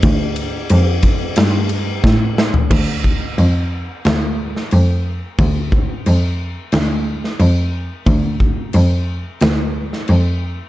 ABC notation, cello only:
X:1
M:4/4
L:1/8
Q:1/4=90
K:Dm
V:1 name="Cello" clef=bass
D,,2 F,,2 G,,2 A,,2 | D,,2 F,,2 D,,2 F,,2 | D,,2 F,,2 D,,2 F,,2 | D,,2 F,,2 D,,2 F,,2 |]